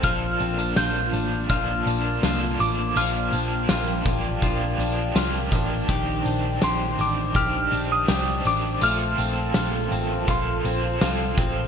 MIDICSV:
0, 0, Header, 1, 7, 480
1, 0, Start_track
1, 0, Key_signature, -2, "major"
1, 0, Tempo, 731707
1, 23, Time_signature, 4, 2, 24, 8
1, 7660, End_track
2, 0, Start_track
2, 0, Title_t, "Synth bell"
2, 0, Program_c, 0, 98
2, 27, Note_on_c, 0, 89, 101
2, 505, Note_on_c, 0, 91, 103
2, 519, Note_off_c, 0, 89, 0
2, 982, Note_on_c, 0, 89, 95
2, 998, Note_off_c, 0, 91, 0
2, 1708, Note_on_c, 0, 86, 82
2, 1724, Note_off_c, 0, 89, 0
2, 1948, Note_on_c, 0, 89, 85
2, 1953, Note_off_c, 0, 86, 0
2, 3359, Note_off_c, 0, 89, 0
2, 4354, Note_on_c, 0, 84, 86
2, 4596, Note_off_c, 0, 84, 0
2, 4598, Note_on_c, 0, 86, 89
2, 4829, Note_on_c, 0, 89, 111
2, 4837, Note_off_c, 0, 86, 0
2, 5161, Note_off_c, 0, 89, 0
2, 5196, Note_on_c, 0, 87, 92
2, 5525, Note_off_c, 0, 87, 0
2, 5556, Note_on_c, 0, 86, 90
2, 5796, Note_off_c, 0, 86, 0
2, 5796, Note_on_c, 0, 89, 106
2, 6761, Note_on_c, 0, 84, 87
2, 6778, Note_off_c, 0, 89, 0
2, 7446, Note_off_c, 0, 84, 0
2, 7660, End_track
3, 0, Start_track
3, 0, Title_t, "Analog synth pad"
3, 0, Program_c, 1, 89
3, 0, Note_on_c, 1, 65, 72
3, 0, Note_on_c, 1, 81, 78
3, 18, Note_on_c, 1, 58, 66
3, 19, Note_on_c, 1, 62, 68
3, 1916, Note_off_c, 1, 81, 0
3, 1943, Note_on_c, 1, 79, 88
3, 3834, Note_off_c, 1, 58, 0
3, 3835, Note_off_c, 1, 65, 0
3, 3859, Note_on_c, 1, 51, 68
3, 3859, Note_on_c, 1, 72, 69
3, 5755, Note_off_c, 1, 62, 0
3, 5757, Note_off_c, 1, 79, 0
3, 5762, Note_off_c, 1, 51, 0
3, 5780, Note_on_c, 1, 69, 66
3, 5781, Note_on_c, 1, 65, 78
3, 5781, Note_on_c, 1, 81, 83
3, 7660, Note_off_c, 1, 65, 0
3, 7660, Note_off_c, 1, 69, 0
3, 7660, Note_off_c, 1, 72, 0
3, 7660, Note_off_c, 1, 81, 0
3, 7660, End_track
4, 0, Start_track
4, 0, Title_t, "Clean electric guitar"
4, 0, Program_c, 2, 27
4, 0, Note_on_c, 2, 60, 60
4, 22, Note_on_c, 2, 53, 87
4, 25, Note_on_c, 2, 65, 68
4, 71, Note_off_c, 2, 60, 0
4, 263, Note_on_c, 2, 60, 61
4, 385, Note_off_c, 2, 60, 0
4, 385, Note_on_c, 2, 62, 57
4, 504, Note_off_c, 2, 65, 0
4, 506, Note_on_c, 2, 65, 70
4, 735, Note_off_c, 2, 62, 0
4, 743, Note_on_c, 2, 62, 64
4, 982, Note_off_c, 2, 65, 0
4, 985, Note_on_c, 2, 65, 75
4, 1224, Note_off_c, 2, 62, 0
4, 1226, Note_on_c, 2, 62, 63
4, 1466, Note_off_c, 2, 65, 0
4, 1468, Note_on_c, 2, 65, 71
4, 1703, Note_off_c, 2, 62, 0
4, 1705, Note_on_c, 2, 62, 61
4, 1941, Note_off_c, 2, 53, 0
4, 1944, Note_on_c, 2, 53, 79
4, 1945, Note_off_c, 2, 65, 0
4, 1947, Note_on_c, 2, 65, 73
4, 2182, Note_off_c, 2, 62, 0
4, 2185, Note_on_c, 2, 62, 62
4, 2414, Note_off_c, 2, 65, 0
4, 2422, Note_on_c, 2, 65, 70
4, 2662, Note_off_c, 2, 62, 0
4, 2665, Note_on_c, 2, 62, 59
4, 2898, Note_off_c, 2, 65, 0
4, 2906, Note_on_c, 2, 65, 69
4, 3142, Note_off_c, 2, 62, 0
4, 3145, Note_on_c, 2, 62, 62
4, 3374, Note_off_c, 2, 65, 0
4, 3382, Note_on_c, 2, 65, 65
4, 3621, Note_off_c, 2, 62, 0
4, 3624, Note_on_c, 2, 62, 61
4, 3861, Note_off_c, 2, 53, 0
4, 3862, Note_off_c, 2, 65, 0
4, 3863, Note_on_c, 2, 51, 80
4, 3867, Note_on_c, 2, 67, 77
4, 4102, Note_off_c, 2, 62, 0
4, 4104, Note_on_c, 2, 62, 60
4, 4338, Note_off_c, 2, 67, 0
4, 4346, Note_on_c, 2, 67, 71
4, 4576, Note_off_c, 2, 62, 0
4, 4584, Note_on_c, 2, 62, 62
4, 4815, Note_off_c, 2, 67, 0
4, 4823, Note_on_c, 2, 67, 77
4, 5055, Note_off_c, 2, 62, 0
4, 5063, Note_on_c, 2, 62, 68
4, 5294, Note_off_c, 2, 67, 0
4, 5302, Note_on_c, 2, 67, 67
4, 5535, Note_off_c, 2, 62, 0
4, 5543, Note_on_c, 2, 62, 62
4, 5782, Note_off_c, 2, 67, 0
4, 5783, Note_off_c, 2, 51, 0
4, 5783, Note_on_c, 2, 57, 77
4, 5786, Note_on_c, 2, 65, 70
4, 5831, Note_off_c, 2, 62, 0
4, 6026, Note_on_c, 2, 60, 62
4, 6263, Note_off_c, 2, 65, 0
4, 6266, Note_on_c, 2, 65, 63
4, 6497, Note_off_c, 2, 60, 0
4, 6505, Note_on_c, 2, 60, 66
4, 6741, Note_off_c, 2, 65, 0
4, 6744, Note_on_c, 2, 65, 78
4, 6980, Note_off_c, 2, 60, 0
4, 6988, Note_on_c, 2, 60, 65
4, 7223, Note_off_c, 2, 65, 0
4, 7226, Note_on_c, 2, 65, 67
4, 7458, Note_off_c, 2, 60, 0
4, 7466, Note_on_c, 2, 60, 62
4, 7660, Note_off_c, 2, 57, 0
4, 7660, Note_off_c, 2, 60, 0
4, 7660, Note_off_c, 2, 65, 0
4, 7660, End_track
5, 0, Start_track
5, 0, Title_t, "Overdriven electric guitar"
5, 0, Program_c, 3, 29
5, 25, Note_on_c, 3, 53, 76
5, 40, Note_on_c, 3, 58, 84
5, 53, Note_on_c, 3, 62, 96
5, 67, Note_on_c, 3, 69, 92
5, 972, Note_off_c, 3, 53, 0
5, 975, Note_on_c, 3, 53, 69
5, 990, Note_off_c, 3, 58, 0
5, 993, Note_on_c, 3, 58, 73
5, 1000, Note_off_c, 3, 62, 0
5, 1002, Note_on_c, 3, 62, 73
5, 1005, Note_off_c, 3, 69, 0
5, 1015, Note_on_c, 3, 69, 70
5, 1454, Note_off_c, 3, 53, 0
5, 1457, Note_on_c, 3, 53, 67
5, 1467, Note_off_c, 3, 58, 0
5, 1469, Note_on_c, 3, 58, 72
5, 1479, Note_off_c, 3, 69, 0
5, 1483, Note_off_c, 3, 62, 0
5, 1486, Note_on_c, 3, 62, 72
5, 1495, Note_on_c, 3, 69, 69
5, 1939, Note_on_c, 3, 46, 80
5, 1944, Note_off_c, 3, 53, 0
5, 1947, Note_on_c, 3, 53, 83
5, 1953, Note_off_c, 3, 58, 0
5, 1955, Note_on_c, 3, 58, 90
5, 1959, Note_off_c, 3, 62, 0
5, 1959, Note_off_c, 3, 69, 0
5, 1962, Note_on_c, 3, 62, 87
5, 1965, Note_on_c, 3, 67, 86
5, 2654, Note_off_c, 3, 67, 0
5, 2656, Note_on_c, 3, 67, 53
5, 2661, Note_off_c, 3, 46, 0
5, 2665, Note_off_c, 3, 53, 0
5, 2669, Note_off_c, 3, 58, 0
5, 2674, Note_off_c, 3, 62, 0
5, 2676, Note_on_c, 3, 62, 49
5, 2693, Note_on_c, 3, 58, 45
5, 2892, Note_on_c, 3, 53, 83
5, 2900, Note_off_c, 3, 58, 0
5, 2900, Note_off_c, 3, 67, 0
5, 2907, Note_on_c, 3, 58, 82
5, 2910, Note_off_c, 3, 62, 0
5, 2919, Note_on_c, 3, 62, 79
5, 2931, Note_on_c, 3, 67, 90
5, 3366, Note_off_c, 3, 53, 0
5, 3374, Note_on_c, 3, 53, 71
5, 3381, Note_off_c, 3, 58, 0
5, 3389, Note_on_c, 3, 58, 72
5, 3397, Note_off_c, 3, 62, 0
5, 3400, Note_on_c, 3, 62, 75
5, 3410, Note_off_c, 3, 67, 0
5, 3412, Note_on_c, 3, 67, 80
5, 3858, Note_off_c, 3, 53, 0
5, 3866, Note_off_c, 3, 58, 0
5, 3866, Note_on_c, 3, 51, 101
5, 3881, Note_on_c, 3, 60, 89
5, 3886, Note_off_c, 3, 62, 0
5, 3892, Note_on_c, 3, 62, 102
5, 3905, Note_off_c, 3, 67, 0
5, 3908, Note_on_c, 3, 67, 105
5, 4801, Note_off_c, 3, 51, 0
5, 4809, Note_on_c, 3, 51, 67
5, 4820, Note_off_c, 3, 60, 0
5, 4823, Note_on_c, 3, 60, 75
5, 4827, Note_off_c, 3, 62, 0
5, 4835, Note_on_c, 3, 62, 70
5, 4839, Note_off_c, 3, 67, 0
5, 4847, Note_on_c, 3, 67, 79
5, 5284, Note_off_c, 3, 51, 0
5, 5291, Note_on_c, 3, 51, 63
5, 5303, Note_off_c, 3, 60, 0
5, 5306, Note_on_c, 3, 60, 65
5, 5309, Note_off_c, 3, 62, 0
5, 5315, Note_off_c, 3, 67, 0
5, 5317, Note_on_c, 3, 62, 71
5, 5329, Note_on_c, 3, 67, 71
5, 5777, Note_off_c, 3, 51, 0
5, 5786, Note_on_c, 3, 53, 82
5, 5790, Note_off_c, 3, 62, 0
5, 5796, Note_off_c, 3, 67, 0
5, 5799, Note_off_c, 3, 60, 0
5, 5801, Note_on_c, 3, 58, 92
5, 5828, Note_on_c, 3, 69, 93
5, 6734, Note_off_c, 3, 53, 0
5, 6736, Note_on_c, 3, 53, 65
5, 6748, Note_off_c, 3, 58, 0
5, 6751, Note_on_c, 3, 58, 77
5, 6764, Note_on_c, 3, 60, 70
5, 6771, Note_off_c, 3, 69, 0
5, 6775, Note_on_c, 3, 69, 71
5, 7212, Note_off_c, 3, 53, 0
5, 7214, Note_on_c, 3, 53, 65
5, 7226, Note_off_c, 3, 58, 0
5, 7228, Note_on_c, 3, 58, 73
5, 7232, Note_off_c, 3, 60, 0
5, 7240, Note_on_c, 3, 60, 70
5, 7248, Note_off_c, 3, 69, 0
5, 7251, Note_on_c, 3, 69, 61
5, 7660, Note_off_c, 3, 53, 0
5, 7660, Note_off_c, 3, 58, 0
5, 7660, Note_off_c, 3, 60, 0
5, 7660, Note_off_c, 3, 69, 0
5, 7660, End_track
6, 0, Start_track
6, 0, Title_t, "Picked electric bass"
6, 0, Program_c, 4, 34
6, 23, Note_on_c, 4, 34, 101
6, 234, Note_off_c, 4, 34, 0
6, 265, Note_on_c, 4, 34, 92
6, 475, Note_off_c, 4, 34, 0
6, 505, Note_on_c, 4, 34, 101
6, 715, Note_off_c, 4, 34, 0
6, 741, Note_on_c, 4, 33, 100
6, 953, Note_off_c, 4, 33, 0
6, 982, Note_on_c, 4, 34, 90
6, 1193, Note_off_c, 4, 34, 0
6, 1221, Note_on_c, 4, 34, 92
6, 1433, Note_off_c, 4, 34, 0
6, 1462, Note_on_c, 4, 36, 109
6, 1674, Note_off_c, 4, 36, 0
6, 1703, Note_on_c, 4, 33, 89
6, 1914, Note_off_c, 4, 33, 0
6, 1942, Note_on_c, 4, 34, 104
6, 2153, Note_off_c, 4, 34, 0
6, 2182, Note_on_c, 4, 34, 99
6, 2394, Note_off_c, 4, 34, 0
6, 2421, Note_on_c, 4, 34, 105
6, 2633, Note_off_c, 4, 34, 0
6, 2660, Note_on_c, 4, 33, 98
6, 2872, Note_off_c, 4, 33, 0
6, 2901, Note_on_c, 4, 34, 96
6, 3113, Note_off_c, 4, 34, 0
6, 3139, Note_on_c, 4, 34, 107
6, 3352, Note_off_c, 4, 34, 0
6, 3381, Note_on_c, 4, 36, 112
6, 3593, Note_off_c, 4, 36, 0
6, 3620, Note_on_c, 4, 33, 89
6, 3832, Note_off_c, 4, 33, 0
6, 3862, Note_on_c, 4, 34, 102
6, 4074, Note_off_c, 4, 34, 0
6, 4102, Note_on_c, 4, 34, 101
6, 4314, Note_off_c, 4, 34, 0
6, 4344, Note_on_c, 4, 34, 98
6, 4555, Note_off_c, 4, 34, 0
6, 4583, Note_on_c, 4, 33, 110
6, 4794, Note_off_c, 4, 33, 0
6, 4823, Note_on_c, 4, 34, 109
6, 5034, Note_off_c, 4, 34, 0
6, 5065, Note_on_c, 4, 34, 98
6, 5275, Note_off_c, 4, 34, 0
6, 5304, Note_on_c, 4, 36, 100
6, 5515, Note_off_c, 4, 36, 0
6, 5545, Note_on_c, 4, 33, 85
6, 5755, Note_off_c, 4, 33, 0
6, 5785, Note_on_c, 4, 34, 105
6, 5995, Note_off_c, 4, 34, 0
6, 6024, Note_on_c, 4, 34, 102
6, 6234, Note_off_c, 4, 34, 0
6, 6263, Note_on_c, 4, 34, 102
6, 6474, Note_off_c, 4, 34, 0
6, 6505, Note_on_c, 4, 33, 99
6, 6715, Note_off_c, 4, 33, 0
6, 6743, Note_on_c, 4, 34, 106
6, 6954, Note_off_c, 4, 34, 0
6, 6984, Note_on_c, 4, 34, 97
6, 7195, Note_off_c, 4, 34, 0
6, 7225, Note_on_c, 4, 36, 110
6, 7435, Note_off_c, 4, 36, 0
6, 7462, Note_on_c, 4, 33, 89
6, 7660, Note_off_c, 4, 33, 0
6, 7660, End_track
7, 0, Start_track
7, 0, Title_t, "Drums"
7, 23, Note_on_c, 9, 36, 114
7, 23, Note_on_c, 9, 42, 77
7, 88, Note_off_c, 9, 42, 0
7, 89, Note_off_c, 9, 36, 0
7, 261, Note_on_c, 9, 42, 52
7, 326, Note_off_c, 9, 42, 0
7, 501, Note_on_c, 9, 38, 127
7, 502, Note_on_c, 9, 54, 81
7, 503, Note_on_c, 9, 42, 81
7, 566, Note_off_c, 9, 38, 0
7, 567, Note_off_c, 9, 54, 0
7, 568, Note_off_c, 9, 42, 0
7, 744, Note_on_c, 9, 42, 48
7, 809, Note_off_c, 9, 42, 0
7, 979, Note_on_c, 9, 42, 81
7, 982, Note_on_c, 9, 36, 93
7, 1044, Note_off_c, 9, 42, 0
7, 1048, Note_off_c, 9, 36, 0
7, 1226, Note_on_c, 9, 42, 58
7, 1292, Note_off_c, 9, 42, 0
7, 1463, Note_on_c, 9, 54, 55
7, 1464, Note_on_c, 9, 38, 92
7, 1465, Note_on_c, 9, 42, 69
7, 1529, Note_off_c, 9, 54, 0
7, 1530, Note_off_c, 9, 38, 0
7, 1530, Note_off_c, 9, 42, 0
7, 1703, Note_on_c, 9, 42, 62
7, 1768, Note_off_c, 9, 42, 0
7, 1944, Note_on_c, 9, 42, 74
7, 2009, Note_off_c, 9, 42, 0
7, 2182, Note_on_c, 9, 42, 54
7, 2248, Note_off_c, 9, 42, 0
7, 2420, Note_on_c, 9, 38, 127
7, 2421, Note_on_c, 9, 54, 80
7, 2422, Note_on_c, 9, 42, 80
7, 2485, Note_off_c, 9, 38, 0
7, 2487, Note_off_c, 9, 42, 0
7, 2487, Note_off_c, 9, 54, 0
7, 2661, Note_on_c, 9, 36, 101
7, 2663, Note_on_c, 9, 42, 54
7, 2727, Note_off_c, 9, 36, 0
7, 2729, Note_off_c, 9, 42, 0
7, 2899, Note_on_c, 9, 42, 78
7, 2902, Note_on_c, 9, 36, 86
7, 2965, Note_off_c, 9, 42, 0
7, 2967, Note_off_c, 9, 36, 0
7, 3146, Note_on_c, 9, 42, 56
7, 3212, Note_off_c, 9, 42, 0
7, 3382, Note_on_c, 9, 54, 66
7, 3383, Note_on_c, 9, 38, 95
7, 3384, Note_on_c, 9, 42, 58
7, 3448, Note_off_c, 9, 54, 0
7, 3449, Note_off_c, 9, 38, 0
7, 3449, Note_off_c, 9, 42, 0
7, 3621, Note_on_c, 9, 36, 96
7, 3623, Note_on_c, 9, 42, 55
7, 3687, Note_off_c, 9, 36, 0
7, 3688, Note_off_c, 9, 42, 0
7, 3863, Note_on_c, 9, 36, 120
7, 3864, Note_on_c, 9, 42, 70
7, 3928, Note_off_c, 9, 36, 0
7, 3929, Note_off_c, 9, 42, 0
7, 4103, Note_on_c, 9, 42, 53
7, 4168, Note_off_c, 9, 42, 0
7, 4341, Note_on_c, 9, 38, 127
7, 4342, Note_on_c, 9, 54, 78
7, 4343, Note_on_c, 9, 42, 75
7, 4406, Note_off_c, 9, 38, 0
7, 4407, Note_off_c, 9, 54, 0
7, 4408, Note_off_c, 9, 42, 0
7, 4584, Note_on_c, 9, 42, 58
7, 4649, Note_off_c, 9, 42, 0
7, 4818, Note_on_c, 9, 42, 80
7, 4822, Note_on_c, 9, 36, 92
7, 4883, Note_off_c, 9, 42, 0
7, 4887, Note_off_c, 9, 36, 0
7, 5065, Note_on_c, 9, 42, 54
7, 5131, Note_off_c, 9, 42, 0
7, 5302, Note_on_c, 9, 54, 61
7, 5303, Note_on_c, 9, 38, 106
7, 5303, Note_on_c, 9, 42, 71
7, 5368, Note_off_c, 9, 54, 0
7, 5369, Note_off_c, 9, 38, 0
7, 5369, Note_off_c, 9, 42, 0
7, 5543, Note_on_c, 9, 42, 62
7, 5608, Note_off_c, 9, 42, 0
7, 5782, Note_on_c, 9, 42, 71
7, 5847, Note_off_c, 9, 42, 0
7, 6022, Note_on_c, 9, 42, 55
7, 6087, Note_off_c, 9, 42, 0
7, 6260, Note_on_c, 9, 38, 127
7, 6261, Note_on_c, 9, 54, 78
7, 6262, Note_on_c, 9, 42, 81
7, 6326, Note_off_c, 9, 38, 0
7, 6327, Note_off_c, 9, 54, 0
7, 6328, Note_off_c, 9, 42, 0
7, 6507, Note_on_c, 9, 42, 54
7, 6573, Note_off_c, 9, 42, 0
7, 6741, Note_on_c, 9, 42, 75
7, 6744, Note_on_c, 9, 36, 97
7, 6806, Note_off_c, 9, 42, 0
7, 6810, Note_off_c, 9, 36, 0
7, 6986, Note_on_c, 9, 42, 54
7, 7052, Note_off_c, 9, 42, 0
7, 7224, Note_on_c, 9, 54, 57
7, 7225, Note_on_c, 9, 38, 102
7, 7226, Note_on_c, 9, 42, 64
7, 7290, Note_off_c, 9, 54, 0
7, 7291, Note_off_c, 9, 38, 0
7, 7291, Note_off_c, 9, 42, 0
7, 7462, Note_on_c, 9, 42, 61
7, 7463, Note_on_c, 9, 36, 106
7, 7528, Note_off_c, 9, 42, 0
7, 7529, Note_off_c, 9, 36, 0
7, 7660, End_track
0, 0, End_of_file